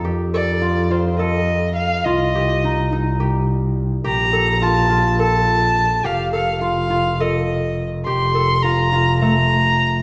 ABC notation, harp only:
X:1
M:7/8
L:1/8
Q:1/4=105
K:Fmix
V:1 name="Harp"
G A F F A2 z | F G E E G2 z | G A F F A2 z | G A F F A2 z |
G A F F A,2 z |]